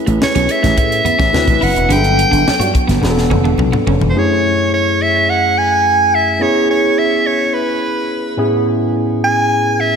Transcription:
Already playing: tine electric piano C#4 E4 G#4 B4
0.06 slap bass A1, clean electric guitar A3, closed hi-hat
0.22 soprano saxophone C#5, snare, high conga
0.35 slap bass B1, clean electric guitar C#4, closed hi-hat
0.49 soprano saxophone E5, muted clean electric guitar stroke, closed hi-hat
0.63 slap bass A1, clean electric guitar A3, snare, closed hi-hat, low conga
0.77 slap bass A2, soprano saxophone E5, muted clean electric guitar stroke, kick, closed hi-hat, muted conga
0.92 closed hi-hat
1.05 clean electric guitar B3, closed hi-hat, low conga
1.19 slap bass A1, clean electric guitar C#4, kick, snare, closed hi-hat
1.33 slap bass D2, tine electric piano C4 E4 F#4 B4, snare, high conga
1.48 slap bass A1, kick, closed hi-hat, high conga
1.61 slap bass F#1, clean electric guitar E4, soprano saxophone F#5, open hi-hat
1.76 slap bass E1, closed hi-hat
1.89 slap bass G1, tine electric piano F#3 B3 D4 G#4, clean electric guitar D4, closed hi-hat, muted conga
1.93 soprano saxophone G5
1.97 tine electric piano A4
2.04 closed hi-hat
2.18 muted clean electric guitar stroke, closed hi-hat
2.31 slap bass G1, clean electric guitar D4, closed hi-hat
2.46 muted slap bass stroke, snare, high conga
2.60 slap bass G2, clean electric guitar F#4, closed hi-hat
2.74 muted clean electric guitar stroke, kick, closed hi-hat
2.88 slap bass G1, clean electric guitar B3, snare, closed hi-hat, low conga
3.01 slap bass E1, tine electric piano B3 D4 F#4 G#4, muted clean electric guitar stroke, snare, muted conga
3.10 tine electric piano A4
3.18 snare
3.30 slap bass E1, clean electric guitar C#4, high tom, low conga
3.44 clean electric guitar D4, high tom
3.58 slap bass B1, muted clean electric guitar stroke, mid tom, high conga
3.72 clean electric guitar B3, mid tom, high conga
3.87 slap bass F#1, clean electric guitar C#4, floor tom
4.01 slap bass E1, floor tom
4.10 soprano saxophone C5
4.14 tine electric piano F#2 A3 C#4 E4 G#4
4.19 soprano saxophone C#5
4.74 soprano saxophone C#5
5.02 soprano saxophone E5
5.29 soprano saxophone F#5
5.58 soprano saxophone G#5
6.15 soprano saxophone E5
6.39 tine electric piano B3 C#4 E4 G#4, soprano saxophone C#5
6.71 soprano saxophone C#5
6.99 soprano saxophone E5
7.27 soprano saxophone C#5
7.54 soprano saxophone B4
8.37 tine electric piano A2 B3 C#4 E4 G#4
9.24 soprano saxophone G#5
9.80 soprano saxophone E5

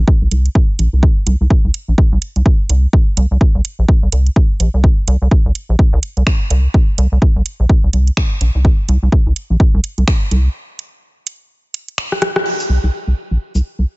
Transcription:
0.08 kick
0.22 analog synth bass C2
0.31 analog synth bass C2, closed hi-hat
0.46 closed hi-hat
0.55 kick
0.79 analog synth bass A#1, closed hi-hat
0.93 analog synth bass C2
1.03 kick
1.27 analog synth bass C2, closed hi-hat
1.41 analog synth bass C2
1.50 kick
1.65 analog synth bass C2
1.74 closed hi-hat
1.88 analog synth bass A#1
1.98 kick
2.12 analog synth bass C2
2.22 closed hi-hat
2.36 analog synth bass C2, closed hi-hat
2.46 kick
2.69 analog synth bass C2, closed hi-hat
2.93 kick
3.17 analog synth bass C2, closed hi-hat
3.31 analog synth bass C2
3.41 kick
3.55 analog synth bass C2
3.65 closed hi-hat
3.79 analog synth bass A#1
3.88 kick
4.03 analog synth bass C2
4.12 analog synth bass C2, closed hi-hat
4.27 closed hi-hat
4.36 kick
4.60 analog synth bass A#1, closed hi-hat
4.74 analog synth bass C2
4.84 kick
5.07 analog synth bass C2, closed hi-hat
5.22 analog synth bass C2
5.31 kick
5.45 analog synth bass C2
5.55 closed hi-hat
5.69 analog synth bass A#1
5.79 kick
5.93 analog synth bass C2
6.03 closed hi-hat
6.17 analog synth bass C2, closed hi-hat
6.27 finger snap, kick
6.50 analog synth bass C2, closed hi-hat
6.74 kick
6.98 analog synth bass C2, closed hi-hat
7.12 analog synth bass C2
7.22 kick
7.36 analog synth bass C2
7.46 closed hi-hat
7.60 analog synth bass A#1
7.69 kick
7.84 analog synth bass C2
7.93 analog synth bass C2, closed hi-hat
8.07 closed hi-hat
8.17 finger snap, kick
8.41 analog synth bass A#1, closed hi-hat
8.55 analog synth bass C2
8.65 kick
8.89 analog synth bass C2, closed hi-hat
9.03 analog synth bass C2
9.12 kick
9.26 analog synth bass C2
9.36 closed hi-hat
9.50 analog synth bass A#1
9.60 kick
9.74 analog synth bass C2
9.84 closed hi-hat
9.98 analog synth bass C2, closed hi-hat
10.08 finger snap, kick
10.31 analog synth bass C2, closed hi-hat
10.79 closed hi-hat
11.27 closed hi-hat
11.74 closed hi-hat
11.88 closed hi-hat
11.98 finger snap
12.12 cross-stick
12.22 cross-stick, closed hi-hat
12.36 cross-stick
12.46 crash
12.60 cabasa
12.69 analog synth bass C2
12.84 analog synth bass C2
13.07 analog synth bass C2
13.31 analog synth bass A#1
13.55 analog synth bass C2, cabasa
13.79 analog synth bass C2

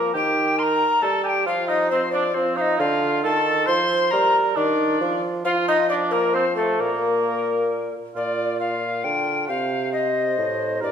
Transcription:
Already playing: bassoon F3, cor anglais A#3, recorder A#4
0.14 bassoon D#3, cor anglais G4, recorder G5
0.58 cor anglais A#4, recorder C6
0.63 recorder A#5
1.02 bassoon G3, cor anglais A4, recorder A5
1.24 cor anglais G4, recorder G#5
1.29 recorder G5
1.46 bassoon F3, cor anglais F4, recorder F5
1.68 cor anglais D#4, recorder D#5
1.91 cor anglais C4, recorder C5
2.12 cor anglais D4, recorder D5
2.34 bassoon F3, cor anglais C4, recorder C5
2.57 cor anglais D#4, recorder F5
2.61 recorder D#5
2.79 bassoon D3, cor anglais F4, recorder F5
3.24 bassoon D#3, cor anglais A4, recorder A5
3.67 bassoon F3, cor anglais C5, recorder C6
4.11 bassoon G3, cor anglais A#4, recorder A#5
4.56 bassoon D#3, cor anglais D4, recorder D5
5.01 bassoon F3
5.45 bassoon F3, cor anglais F4, recorder F5
5.68 cor anglais D#4, recorder D#5
5.89 cor anglais D4, recorder D5
6.11 cor anglais A#3, recorder A#4
6.34 cor anglais C4, recorder C5
6.56 cor anglais A3, recorder A4
6.80 bassoon A#2, cor anglais A#3, recorder A#4
8.15 bassoon A#2, cor anglais F4, recorder D5
8.60 cor anglais F4, recorder F5
9.04 bassoon D3, recorder G5
9.48 bassoon C3, cor anglais C5, recorder F5
9.93 cor anglais C5, recorder D#5
10.38 bassoon A2
10.81 bassoon G2, cor anglais A#4, recorder D5

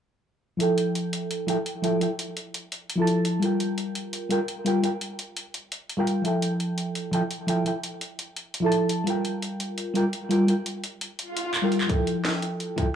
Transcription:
0.57 fm electric piano F3 E4, closed hi-hat
0.61 fm electric piano A4 G5
0.78 closed hi-hat
0.95 closed hi-hat
1.13 closed hi-hat
1.31 closed hi-hat
1.47 fm electric piano F3 E4 A4 G5, closed hi-hat
1.66 closed hi-hat
1.82 fm electric piano F3 E4 A4 G5, closed hi-hat
2.00 fm electric piano F3 E4 A4 G5, closed hi-hat
2.19 closed hi-hat
2.37 closed hi-hat
2.54 closed hi-hat
2.72 closed hi-hat
2.90 closed hi-hat
2.96 fm electric piano F3 E4
3.00 fm electric piano A4 A5
3.07 closed hi-hat
3.25 closed hi-hat
3.39 fm electric piano G3 F4, closed hi-hat
3.43 fm electric piano A#4 G5
3.60 closed hi-hat
3.78 closed hi-hat
3.95 closed hi-hat
4.13 closed hi-hat
4.29 fm electric piano G3 F4 A#4 G5, closed hi-hat
4.48 closed hi-hat
4.65 fm electric piano G3 F4 A#4 G5, closed hi-hat
4.82 fm electric piano G3 F4 A#4 G5, closed hi-hat
5.01 closed hi-hat
5.19 closed hi-hat
5.37 closed hi-hat
5.54 closed hi-hat
5.72 closed hi-hat
5.89 closed hi-hat
5.97 fm electric piano G3 F4 A#4 G5
6.07 closed hi-hat
6.22 fm electric piano F3 E4, closed hi-hat
6.26 fm electric piano A4 G5
6.42 closed hi-hat
6.60 closed hi-hat
6.78 closed hi-hat
6.95 closed hi-hat
7.11 fm electric piano F3 E4 A4 G5, closed hi-hat
7.31 closed hi-hat
7.47 fm electric piano F3 E4 A4 G5, closed hi-hat
7.64 fm electric piano F3 E4 A4 G5, closed hi-hat
7.84 closed hi-hat
8.01 closed hi-hat
8.19 closed hi-hat
8.36 closed hi-hat
8.54 closed hi-hat
8.60 fm electric piano F3 E4
8.64 fm electric piano A4 A5
8.72 closed hi-hat
8.89 closed hi-hat
9.04 fm electric piano G3 F4, closed hi-hat
9.08 fm electric piano A#4 G5
9.25 closed hi-hat
9.42 closed hi-hat
9.60 closed hi-hat
9.78 closed hi-hat
9.94 fm electric piano G3 F4 A#4 G5, closed hi-hat
10.13 closed hi-hat
10.29 fm electric piano G3 F4 A#4 G5, closed hi-hat
10.47 fm electric piano G3 F4 A#4 G5, closed hi-hat
10.66 closed hi-hat
10.84 closed hi-hat
11.01 closed hi-hat
11.19 closed hi-hat, swell
11.37 closed hi-hat
11.54 clap, closed hi-hat
11.62 fm electric piano G3 F4 A#4 G5
11.72 closed hi-hat
11.81 clap
11.87 fm electric piano F3 E4, kick, closed hi-hat
11.91 fm electric piano A4 G5
12.07 closed hi-hat
12.25 snare, closed hi-hat
12.42 closed hi-hat
12.60 closed hi-hat
12.76 fm electric piano F3 E4 A4 G5, kick, closed hi-hat

